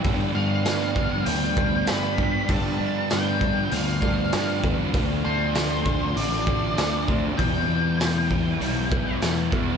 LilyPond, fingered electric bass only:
\new Staff \with { instrumentName = "Fingered electric bass" } { \clef bass \time 4/4 \key g \mixolydian \tempo 4 = 98 g,8 g,4. d,4 g,8 g,8 | g,8 g,4. d,4 g,8 e,8 | d,8 d,4. a,,4 d,8 d,8 | e,8 e,4. b,,4 e,8 e,8 | }